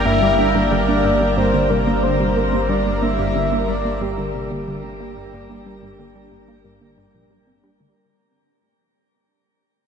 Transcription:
Already playing: G1 G3 A#3 D4 A#4 D5
0.05 G2 A#3 E5
0.22 G2 G3
0.38 A#3 D4
0.55 G2 A#3
0.71 D3 G3 D5
0.88 A#3 D4
1.04 G2 A#3
1.21 G3 A#3
1.37 G2 A#3 C5
1.54 D3 A#3
1.70 C3 G3 A#4
1.87 D3 A#3
2.03 D3 A#3 C5
2.20 C3 G3
2.36 A#3
2.53 G2 A#3
2.69 G2 G3 D5
2.86 G2 A#3
3.02 A#3 D4 E5
3.19 G2 G3
3.35 D3 A#3
3.52 A#3 D4
3.68 G2 G3 D5
3.85 A#3
4.01 G2 A#3 G4
4.18 D3 G3
4.35 C3 A#3
4.51 D3 A#3
4.67 D3 G3
4.84 C3 A#3
5.00 A#3
5.17 G2 G3
5.33 G2 A#3
5.50 G2 A#3
5.66 G3 D4
5.82 G2 A#3
5.99 D3 A#3
6.15 G3 D4
6.32 G2 A#3
6.48 A#3
6.65 G2 G3
6.81 D3 A#3
6.98 G2 G3
7.14 A#2 F3
7.31 G2 G3
7.47 G2 C4
7.64 G3 D4
7.80 D3 A3

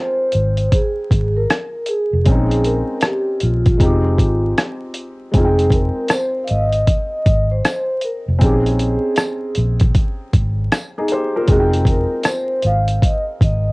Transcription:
Already playing: G#3 C4 D#4 F4 C5 G5
0.32 G#1, closed hi-hat
0.57 closed hi-hat
0.72 G#4, kick, closed hi-hat
1.11 G#1, kick, closed hi-hat
1.37 A#4
1.50 cross-stick, closed hi-hat
1.86 G#4, closed hi-hat
2.13 F1
2.24 A#1 G#3 C4, kick, closed hi-hat
2.29 C#4 D#4
2.51 closed hi-hat
2.64 A#4, closed hi-hat
3.01 G4, cross-stick, closed hi-hat
3.40 A#1 F4, closed hi-hat
3.66 kick, closed hi-hat
3.78 F1 G#3 C4, kick, closed hi-hat
3.82 D#4 G4
4.19 G#1, kick, closed hi-hat
4.58 cross-stick, closed hi-hat
4.94 closed hi-hat
5.31 F1 G#3 C4, kick, closed hi-hat
5.36 D#4 F4 G#4
5.45 G5
5.59 closed hi-hat
5.70 A#4, kick, closed hi-hat
6.08 C5, cross-stick, closed hi-hat, tambourine
6.44 F5, closed hi-hat
6.49 G#1 D#5
6.72 closed hi-hat
6.87 D#5, kick, closed hi-hat
7.26 G#1, kick, closed hi-hat
7.51 C5
7.65 cross-stick, closed hi-hat, tambourine
8.01 A#4, closed hi-hat
8.28 F1
8.39 A#1 C4 C#4, kick, closed hi-hat
8.43 D#4 G4 G#4
8.52 G#4
8.66 closed hi-hat
8.79 closed hi-hat
9.16 cross-stick, closed hi-hat, tambourine
9.55 A#1, closed hi-hat
9.80 kick, closed hi-hat
9.95 kick, closed hi-hat
10.33 G#1, kick, closed hi-hat
10.72 cross-stick, closed hi-hat, tambourine
10.98 D#4 G#4
11.08 G4 C5, closed hi-hat
11.36 F4 A#4
11.46 F1 G#3 C4, kick, closed hi-hat
11.51 D#4 F#4 G#4
11.60 G5
11.73 closed hi-hat
11.85 kick, closed hi-hat
11.90 A#4
12.23 C5, cross-stick, closed hi-hat, tambourine
12.62 G#1 F5, closed hi-hat
12.88 closed hi-hat
13.02 D#5, kick, closed hi-hat
13.41 G#1 D#5, kick, closed hi-hat

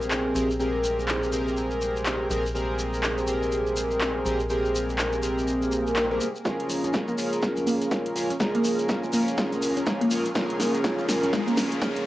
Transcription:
Already playing: A#1 C4 G4 G#4 A#4
0.01 shekere
0.11 clap, shekere
0.35 A#1 C4 G4 G#4 A#4, shekere
0.51 shekere
0.59 C4 G4 G#4 A#4, shekere
0.84 shekere
0.99 shekere
1.08 clap, shekere
1.23 shekere
1.32 C4 G4 G#4 A#4, shekere
1.48 shekere
1.57 shekere
1.71 shekere
1.81 shekere
1.96 shekere
2.05 clap, shekere
2.30 A#1 C4 G4 G#4 A#4, shekere
2.46 shekere
2.54 C4 G4 G#4 A#4, shekere
2.79 shekere
2.94 shekere
3.03 clap, shekere
3.18 shekere
3.27 C4 G4 G#4 A#4, shekere
3.43 shekere
3.52 shekere
3.67 shekere
3.77 shekere
3.91 shekere
4.01 clap, shekere
4.25 A#1 C4 G4 G#4 A#4, shekere
4.40 shekere
4.49 C4 G4 G#4 A#4, shekere
4.65 shekere
4.75 shekere
4.89 shekere
4.98 clap, shekere
5.12 shekere
5.23 C4 G4 G#4 A#4, shekere
5.38 shekere
5.47 swell, shekere
5.62 shekere
5.72 shekere
5.87 shekere
5.96 clap, shekere
6.11 C4 G4 G#4 A#4
6.21 shekere
6.35 shekere
6.45 C#4 F4 G#4 A#4, kick, snare, riser, shekere
6.60 closed hi-hat
6.69 A#1, open hi-hat, shekere
6.84 C#4, closed hi-hat, shekere
6.93 G#3, kick, snare, shekere
7.08 A#1 A#3, shekere
7.18 C#4 F4 G#4 A#4, open hi-hat, shekere
7.33 closed hi-hat, shekere
7.42 kick, snare, shekere
7.56 A#1, closed hi-hat, shekere
7.67 A#3, open hi-hat, shekere
7.82 closed hi-hat, shekere
7.91 A#1 F4, kick, snare, shekere
8.06 closed hi-hat
8.16 C#4 F4 G#4 A#4, open hi-hat, shekere
8.30 A#1 C#4, closed hi-hat, shekere
8.40 G#3 C#4 F4 G#4 A#4, kick, snare, shekere
8.55 A#3, closed hi-hat
8.64 A#1, open hi-hat, shekere
8.79 closed hi-hat, shekere
8.89 kick, snare, shekere
9.03 A#1, shekere
9.13 A#3 C#4 F4 G#4 A#4, open hi-hat, shekere
9.28 closed hi-hat, shekere
9.37 F4, kick, snare, shekere
9.52 A#1, closed hi-hat, shekere
9.62 open hi-hat, shekere
9.77 C#4, closed hi-hat, shekere
9.86 A#1 G#3, kick, snare, shekere
10.01 A#3, closed hi-hat
10.11 C#4 F4 G#4 A#4, open hi-hat, shekere
10.25 A#1, closed hi-hat, shekere
10.35 C#4 F4 G#4 A#4, kick, snare, shekere
10.50 closed hi-hat
10.60 A#1 A#3, snare, open hi-hat, shekere
10.75 closed hi-hat, shekere
10.84 F4, kick, snare, shekere
10.98 A#1, shekere
11.08 C#4 F4 G#4 A#4, snare, open hi-hat, shekere
11.23 C#4, closed hi-hat, shekere
11.33 G#3, kick, snare, shekere
11.48 A#1 A#3, closed hi-hat, shekere
11.57 snare, open hi-hat, shekere
11.72 closed hi-hat, shekere
11.82 A#1, kick, snare, shekere
11.96 closed hi-hat

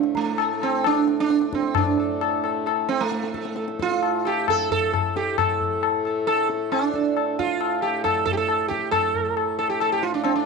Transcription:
Already playing: A2 A3
0.03 tabla te
0.15 A3, tabla ke
0.27 tabla te
0.38 tabla na
0.62 C4, tabla na
0.84 D4, tabla na
1.08 tabla te
1.20 D4
1.30 tabla te
1.42 tabla te
1.53 C4, tabla ke
1.64 tabla te
1.75 D4, tabla na, tabla ge
1.98 A4, tabla ge
2.21 A4, tabla na
2.44 A4, tabla na
2.66 A4, tabla na
2.89 C4, tabla te
3.01 A3
3.12 tabla te
3.24 tabla te
3.34 A4, tabla ke
3.45 tabla te
3.56 A4, tabla te
3.68 tabla te
3.79 F4 A4, tabla ke
3.91 tabla te
4.03 tabla na
4.25 G4 A4, tabla na
4.48 A4, tabla na, tabla ge
4.71 A4, tabla ge
4.93 A4, tabla na, tabla ge
5.16 G4 A4, tabla te
5.38 A2 A3 A4, tabla na, tabla ge
5.61 tabla ge
5.83 tabla na
6.05 A4, tabla na
6.27 A4, tabla na
6.49 A4, tabla te
6.72 D4, tabla na
6.94 A4, tabla ke
7.17 A4, tabla na
7.39 F4, tabla ke
7.61 tabla na
7.82 G4, tabla na
8.04 A4, tabla na, tabla ge
8.26 A4, tabla ge
8.33 G4
8.37 A4
8.49 tabla na
8.68 G4, tabla ke
8.91 A4, tabla na, tabla ge
9.15 tabla ge
9.37 tabla na
9.59 A4, tabla na
9.70 G4
9.80 A4, tabla na
9.92 G4
10.02 F4, tabla te
10.14 D4
10.24 C4, tabla na
10.36 D4

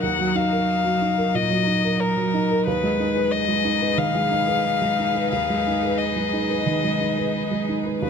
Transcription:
Already playing: D#4 F#4 A#4
0.03 D#2 F#5
0.19 F#3
0.35 D#4 F5
0.52 A#4
0.84 F#3
1.01 D#4
1.17 A#4
1.34 A#2 D#5
1.50 F#3
1.67 D#4
1.84 A#4
2.00 A#4
2.17 F#3
2.34 D#4
2.50 A#4
2.65 D#2 D#4 G#4 B4
2.83 G#3
3.00 D#4
3.15 B4
3.31 D#5
3.48 G#3
3.64 D#4
3.81 B4
3.98 D#3 F5
4.15 G#3
4.31 D#4
4.47 B4
4.82 G#3
4.99 D#4
5.15 B4
5.31 D#2 F5
5.50 G#3
5.67 D#4
5.83 B4
5.98 D#5
6.16 G#3
6.33 D#4
6.49 B4
6.66 D#3
6.84 G#3
7.00 D#4
7.18 B4
7.51 G#3
7.69 D#4
7.85 B4
8.02 D#2 B3 C#4 F#4 B4

